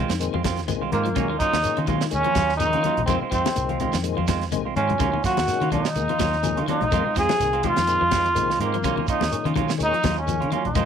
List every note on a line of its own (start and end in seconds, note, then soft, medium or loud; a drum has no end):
0.00 0.12 D#3 medium
0.00 0.12 G#3 medium
0.00 0.12 C4 medium
0.00 0.12 F4 medium
0.10 0.29 F2 medium
0.10 0.26 D#3 medium
0.10 snare medium
0.10 closed hi-hat soft
0.10 shekere medium
0.20 0.36 A#2 loud
0.20 0.36 D#3 medium
0.20 0.36 G#3 medium
0.20 0.36 C4 loud
0.20 closed hi-hat medium
0.20 shekere medium
0.34 0.69 F2 medium
0.34 0.50 F3 medium
0.34 0.45 G#3 soft
0.34 0.44 C4 soft
0.34 0.44 F4 medium
0.34 high conga medium
0.44 0.60 D#3 medium
0.44 0.60 C4 medium
0.44 0.60 F4 medium
0.44 kick medium
0.44 snare medium
0.44 closed hi-hat medium
0.44 high conga medium
0.44 shekere medium
0.57 snare soft
0.57 closed hi-hat soft
0.57 shekere soft
0.67 0.89 C2 loud
0.67 0.84 A#2 medium
0.67 0.83 D#3 medium
0.67 0.84 G#3 medium
0.67 0.84 C4 loud
0.67 closed hi-hat medium
0.67 high conga medium
0.67 shekere medium
0.82 0.92 G#3 soft
0.82 0.92 C4 medium
0.82 0.92 F4 medium
0.92 1.16 G#2 medium
0.92 1.08 D#3 medium
0.92 1.08 G#3 medium
0.92 1.37 A#3 medium
0.92 1.08 C4 medium
0.92 1.08 F4 medium
0.92 closed hi-hat soft
0.92 high conga medium
0.92 shekere soft
1.05 1.12 F3 medium
1.05 closed hi-hat soft
1.16 1.36 D#2 medium
1.16 1.32 A#2 medium
1.16 1.25 C#3 medium
1.16 1.32 D#3 medium
1.16 1.29 F#3 medium
1.16 1.32 G#3 medium
1.16 1.30 A#3 medium
1.16 1.32 C#4 medium
1.16 1.29 C#4 medium
1.16 muted clean electric guitar stroke medium
1.16 kick medium
1.16 closed hi-hat medium
1.16 low conga medium
1.16 shekere medium
1.29 1.46 D#3 medium
1.29 1.39 A#3 soft
1.29 1.40 C#4 soft
1.29 1.40 F4 medium
1.39 1.55 F#3 medium
1.39 1.56 A#3 medium
1.39 1.56 C#4 medium
1.39 1.84 D#4 loud
1.39 1.56 F4 medium
1.39 kick medium
1.39 closed hi-hat soft
1.39 shekere medium
1.53 1.62 D#2 medium
1.53 snare medium
1.53 high conga medium
1.53 shekere soft
1.63 1.79 A#2 medium
1.63 1.79 D#3 medium
1.63 1.79 G#3 medium
1.63 1.80 C#4 medium
1.63 closed hi-hat medium
1.63 shekere medium
1.77 1.85 C#3 medium
1.77 2.14 D#3 medium
1.77 1.88 A#3 soft
1.77 1.88 C#4 soft
1.77 1.88 F4 soft
1.77 closed hi-hat soft
1.87 1.97 D#3 medium
1.87 2.04 F#3 medium
1.87 2.04 A#3 medium
1.87 2.04 C#4 medium
1.87 2.04 F4 medium
1.87 kick medium
1.87 closed hi-hat soft
1.87 high conga medium
1.87 low conga medium
1.87 shekere soft
2.01 2.18 D#3 medium
2.01 snare medium
2.01 shekere medium
2.11 2.23 D#2 medium
2.11 2.27 A#2 medium
2.11 2.27 D#3 medium
2.11 2.28 G#3 medium
2.11 2.28 C#4 medium
2.11 2.56 C#4 loud
2.11 closed hi-hat medium
2.11 shekere medium
2.24 2.32 F3 medium
2.24 2.36 A#3 soft
2.24 2.36 C#4 soft
2.24 2.36 F4 medium
2.24 closed hi-hat soft
2.24 high conga medium
2.35 2.75 D#2 medium
2.35 2.52 F#3 medium
2.35 2.52 A#3 medium
2.35 2.52 C#4 medium
2.35 2.52 F4 medium
2.35 kick medium
2.35 snare medium
2.35 closed hi-hat medium
2.35 high conga medium
2.35 shekere medium
2.49 snare soft
2.49 shekere soft
2.57 2.75 A#2 medium
2.57 2.75 D#3 medium
2.57 2.76 F3 medium
2.57 2.75 G#3 medium
2.57 2.75 C#4 medium
2.57 3.03 D#4 loud
2.57 closed hi-hat medium
2.57 high conga medium
2.57 shekere medium
2.73 2.83 D#3 medium
2.73 2.84 A#3 soft
2.73 2.84 C#4 soft
2.73 2.84 F4 medium
2.73 closed hi-hat soft
2.83 3.00 D#3 medium
2.83 3.00 F#3 medium
2.83 3.00 A#3 medium
2.83 3.00 C#4 medium
2.83 3.01 F4 medium
2.83 closed hi-hat medium
2.83 high conga medium
2.83 shekere soft
2.97 3.06 A#1 medium
2.97 closed hi-hat soft
2.97 low conga medium
3.06 3.19 F2 medium
3.06 3.23 A#2 medium
3.06 3.24 D#3 medium
3.06 3.21 D#3 medium
3.06 3.24 G#3 medium
3.06 3.21 G#3 medium
3.06 3.17 C4 medium
3.06 3.24 C4 medium
3.06 3.21 C4 medium
3.06 3.20 F4 medium
3.06 kick medium
3.06 closed hi-hat medium
3.06 low conga medium
3.06 shekere medium
3.22 3.32 G#3 soft
3.22 3.32 C4 soft
3.22 3.32 F4 soft
3.22 muted fingered electric bass stroke soft
3.31 3.43 F2 medium
3.31 3.48 D#3 medium
3.31 3.48 F3 medium
3.31 3.48 G#3 medium
3.31 3.99 C4 medium
3.31 3.48 C4 medium
3.31 3.48 F4 medium
3.31 kick medium
3.31 closed hi-hat soft
3.31 shekere medium
3.45 snare medium
3.45 closed hi-hat soft
3.45 high conga medium
3.45 shekere soft
3.54 3.87 C2 medium
3.54 3.71 A#2 medium
3.54 3.71 D#3 medium
3.54 3.71 G#3 medium
3.54 3.71 C4 medium
3.54 closed hi-hat medium
3.54 shekere medium
3.69 3.79 G#3 soft
3.69 3.80 C4 soft
3.69 3.80 F4 soft
3.69 closed hi-hat soft
3.69 high conga medium
3.80 3.96 D#3 medium
3.80 3.96 G#3 medium
3.80 3.96 C4 medium
3.80 3.96 F4 medium
3.80 closed hi-hat soft
3.80 high conga medium
3.80 low conga medium
3.80 shekere soft
3.93 4.14 F2 medium
3.93 4.10 D#3 medium
3.93 snare medium
3.93 closed hi-hat soft
3.93 shekere medium
4.03 4.20 A#2 medium
4.03 4.19 D#3 medium
4.03 4.20 G#3 medium
4.03 4.20 C4 medium
4.03 closed hi-hat medium
4.03 shekere medium
4.17 4.53 F2 medium
4.17 4.33 F3 medium
4.17 4.27 G#3 soft
4.17 4.28 C4 soft
4.17 4.28 F4 medium
4.17 high conga medium
4.27 4.43 D#3 medium
4.27 4.44 G#3 medium
4.27 4.44 C4 medium
4.27 4.44 F4 medium
4.27 kick medium
4.27 snare medium
4.27 closed hi-hat medium
4.27 high conga medium
4.27 shekere medium
4.41 snare soft
4.41 closed hi-hat soft
4.41 shekere soft
4.51 4.73 C2 medium
4.51 4.67 A#2 medium
4.51 4.68 D#3 medium
4.51 4.68 G#3 medium
4.51 4.68 C4 medium
4.51 closed hi-hat medium
4.51 high conga medium
4.51 shekere medium
4.65 4.75 G#3 soft
4.65 4.76 C4 soft
4.65 4.76 F4 soft
4.76 5.00 G#2 medium
4.76 4.92 D#3 medium
4.76 4.92 G#3 medium
4.76 4.92 C4 medium
4.76 5.21 C#4 medium
4.76 4.92 F4 medium
4.76 closed hi-hat soft
4.76 high conga medium
4.76 shekere soft
4.89 4.96 F3 medium
4.89 closed hi-hat soft
4.89 low conga medium
4.98 5.20 D#2 medium
4.98 5.15 A#2 medium
4.98 5.09 C#3 medium
4.98 5.15 D#3 medium
4.98 5.13 F#3 medium
4.98 5.15 G#3 medium
4.98 5.13 A#3 medium
4.98 5.15 C#4 medium
4.98 5.12 C#4 medium
4.98 5.11 F4 medium
4.98 kick medium
4.98 closed hi-hat medium
4.98 low conga medium
4.98 shekere medium
5.13 5.30 D#3 medium
5.13 5.23 A#3 soft
5.13 5.23 C#4 soft
5.13 5.24 F4 soft
5.13 high conga medium
5.24 5.39 F#3 medium
5.24 5.39 A#3 medium
5.24 5.40 C#4 medium
5.24 5.40 F4 medium
5.24 5.70 F#4 medium
5.24 kick medium
5.24 snare soft
5.24 closed hi-hat soft
5.24 shekere medium
5.37 5.46 D#2 medium
5.37 snare medium
5.37 high conga medium
5.37 shekere soft
5.47 5.63 A#2 medium
5.47 5.64 D#3 medium
5.47 5.64 G#3 medium
5.47 5.64 C#4 medium
5.47 snare soft
5.47 closed hi-hat medium
5.47 shekere medium
5.61 5.69 C#3 medium
5.61 5.97 D#3 medium
5.61 5.71 A#3 soft
5.61 5.72 C#4 medium
5.61 5.72 F4 soft
5.61 closed hi-hat soft
5.72 5.81 D#3 medium
5.72 5.87 F#3 medium
5.72 5.88 A#3 medium
5.72 5.88 C#4 medium
5.72 6.64 D#4 medium
5.72 5.88 F4 medium
5.72 kick medium
5.72 closed hi-hat soft
5.72 high conga medium
5.72 low conga medium
5.72 shekere soft
5.85 snare medium
5.85 shekere medium
5.96 6.07 D#2 medium
5.96 6.12 A#2 medium
5.96 6.12 D#3 medium
5.96 6.12 G#3 medium
5.96 6.12 A#3 medium
5.96 closed hi-hat medium
5.96 shekere medium
6.09 6.17 F3 medium
6.09 6.19 A#3 soft
6.09 6.20 F4 soft
6.09 closed hi-hat soft
6.09 high conga medium
6.19 6.59 D#2 medium
6.19 6.36 F#3 medium
6.19 6.35 A#3 medium
6.19 6.36 C#4 medium
6.19 6.36 F4 medium
6.19 muted clean electric guitar stroke medium
6.19 kick medium
6.19 snare medium
6.19 closed hi-hat medium
6.19 high conga medium
6.19 shekere medium
6.33 snare soft
6.33 shekere soft
6.42 6.59 A#2 medium
6.42 6.59 D#3 medium
6.42 6.60 F3 medium
6.42 6.59 G#3 medium
6.42 6.59 C#4 medium
6.42 closed hi-hat medium
6.42 high conga medium
6.42 shekere medium
6.57 6.66 D#3 medium
6.57 6.67 A#3 soft
6.57 6.68 C#4 medium
6.57 6.68 F4 medium
6.57 closed hi-hat soft
6.67 6.84 D#3 medium
6.67 6.84 F#3 medium
6.67 6.84 A#3 medium
6.67 6.84 C#4 medium
6.67 7.14 D#4 medium
6.67 6.84 F4 medium
6.67 closed hi-hat soft
6.67 high conga medium
6.67 shekere soft
6.81 6.90 A#1 medium
6.81 closed hi-hat soft
6.81 low conga medium
6.91 7.03 F2 medium
6.91 7.08 A#2 medium
6.91 7.07 D#3 medium
6.91 7.06 D#3 medium
6.91 7.08 G#3 medium
6.91 7.06 G#3 medium
6.91 7.08 C4 medium
6.91 7.05 C4 medium
6.91 7.05 F4 medium
6.91 kick medium
6.91 closed hi-hat medium
6.91 low conga medium
6.91 shekere medium
7.05 7.15 G#3 soft
7.05 7.15 C4 soft
7.05 7.16 F4 soft
7.05 muted fingered electric bass stroke soft
7.16 7.27 F2 medium
7.16 7.31 D#3 medium
7.16 7.33 F3 medium
7.16 7.31 G#3 medium
7.16 7.31 C4 medium
7.16 7.32 F4 medium
7.16 7.69 G#4 loud
7.16 kick medium
7.16 snare soft
7.16 closed hi-hat medium
7.16 shekere medium
7.29 snare medium
7.29 closed hi-hat soft
7.29 high conga medium
7.29 shekere soft
7.40 7.71 C2 medium
7.40 7.56 A#2 medium
7.40 7.56 D#3 medium
7.40 7.56 G#3 medium
7.40 7.56 C4 medium
7.40 snare soft
7.40 closed hi-hat medium
7.40 shekere medium
7.53 7.63 G#3 soft
7.53 7.63 C4 medium
7.53 7.63 F4 medium
7.53 closed hi-hat soft
7.63 7.79 D#3 medium
7.63 7.79 G#3 medium
7.63 7.80 C4 medium
7.63 7.80 F4 medium
7.63 kick medium
7.63 closed hi-hat soft
7.63 high conga medium
7.63 low conga medium
7.63 shekere soft
7.68 8.61 F4 loud
7.76 7.98 F2 medium
7.76 7.94 D#3 medium
7.76 snare medium
7.76 closed hi-hat soft
7.76 shekere medium
7.87 8.03 A#2 medium
7.87 8.03 D#3 medium
7.87 8.03 G#3 medium
7.87 8.03 C4 medium
7.87 closed hi-hat medium
7.87 shekere medium
8.01 8.37 F2 medium
8.01 8.17 F3 medium
8.01 8.12 G#3 soft
8.01 8.12 F4 soft
8.11 8.27 D#3 soft
8.11 8.28 G#3 medium
8.11 8.28 C4 medium
8.11 8.28 F4 medium
8.11 kick medium
8.11 snare medium
8.11 closed hi-hat medium
8.11 high conga medium
8.11 shekere medium
8.25 closed hi-hat soft
8.25 shekere soft
8.35 8.56 C2 loud
8.35 8.51 A#2 medium
8.35 8.51 D#3 medium
8.35 8.51 G#3 medium
8.35 8.53 G#3 medium
8.35 8.52 C4 medium
8.35 closed hi-hat medium
8.35 high conga medium
8.35 shekere medium
8.50 8.60 G#3 soft
8.50 8.60 C4 soft
8.50 8.60 F4 medium
8.50 snare soft
8.60 8.84 G#2 medium
8.60 8.76 D#3 medium
8.60 8.76 G#3 medium
8.60 9.06 A#3 medium
8.60 8.76 C4 medium
8.60 8.76 F4 medium
8.60 closed hi-hat soft
8.60 high conga medium
8.60 shekere soft
8.74 8.81 F3 medium
8.74 closed hi-hat soft
8.84 9.04 D#2 medium
8.84 8.99 A#2 medium
8.84 8.93 C#3 medium
8.84 8.99 D#3 medium
8.84 8.97 F#3 medium
8.84 9.00 G#3 medium
8.84 9.00 C#4 medium
8.84 8.97 C#4 medium
8.84 8.97 F4 medium
8.84 muted clean electric guitar stroke medium
8.84 kick medium
8.84 closed hi-hat medium
8.84 low conga medium
8.84 shekere medium
8.97 9.14 D#3 medium
8.97 9.07 A#3 soft
8.97 9.08 C#4 soft
8.97 9.08 F4 soft
8.97 high conga medium
9.07 9.24 A#3 medium
9.07 9.24 C#4 medium
9.07 9.51 D#4 medium
9.07 9.24 F4 medium
9.07 kick medium
9.07 closed hi-hat soft
9.07 shekere medium
9.21 9.30 D#2 medium
9.21 snare medium
9.21 high conga medium
9.21 shekere soft
9.31 9.47 A#2 medium
9.31 9.47 D#3 medium
9.31 9.47 G#3 medium
9.31 9.47 C#4 medium
9.31 closed hi-hat medium
9.31 shekere medium
9.45 9.53 C#3 medium
9.45 9.82 D#3 medium
9.45 9.55 A#3 soft
9.45 9.55 C#4 soft
9.45 9.56 F4 medium
9.45 closed hi-hat soft
9.45 high conga medium
9.56 9.65 D#3 medium
9.56 9.71 F#3 medium
9.56 9.71 A#3 medium
9.56 9.71 C#4 medium
9.56 9.72 F4 medium
9.56 kick medium
9.56 closed hi-hat soft
9.56 high conga medium
9.56 low conga medium
9.56 shekere soft
9.69 9.86 D#3 medium
9.69 snare medium
9.69 shekere medium
9.78 9.91 D#2 medium
9.78 9.95 A#2 medium
9.78 9.95 D#3 medium
9.78 9.95 G#3 medium
9.78 9.95 C#4 medium
9.78 closed hi-hat medium
9.78 shekere medium
9.84 10.16 D#4 loud
9.93 10.00 F3 medium
9.93 10.03 A#3 soft
9.93 muted clean electric guitar stroke soft
9.93 closed hi-hat soft
10.03 10.44 D#2 medium
10.03 10.20 F#3 medium
10.03 10.19 F#3 medium
10.03 10.19 A#3 medium
10.03 10.19 C#4 medium
10.03 10.19 F4 medium
10.03 kick medium
10.03 snare medium
10.03 closed hi-hat medium
10.03 high conga medium
10.03 shekere medium
10.17 10.50 C#4 medium
10.17 shekere soft
10.26 10.43 A#2 medium
10.26 10.43 D#3 medium
10.26 10.44 F3 medium
10.26 10.43 G#3 medium
10.26 10.43 C#4 medium
10.26 closed hi-hat medium
10.26 high conga medium
10.26 shekere medium
10.40 10.51 D#3 medium
10.40 10.51 A#3 soft
10.40 10.51 C#4 soft
10.40 10.51 F4 soft
10.40 closed hi-hat soft
10.51 10.68 D#3 medium
10.51 10.67 F#3 medium
10.51 10.67 A#3 medium
10.51 10.65 C#4 medium
10.51 10.68 F4 medium
10.51 muted clean electric guitar stroke medium
10.51 closed hi-hat soft
10.51 high conga medium
10.51 shekere soft
10.65 10.75 A#1 medium
10.65 10.85 D#4 loud
10.65 closed hi-hat soft
10.65 low conga medium
10.75 10.85 F2 medium
10.75 10.85 A#2 medium
10.75 10.85 D#3 medium
10.75 10.85 G#3 medium
10.75 10.85 C4 medium
10.75 10.85 F4 medium
10.75 kick medium
10.75 closed hi-hat medium
10.75 low conga medium
10.75 shekere medium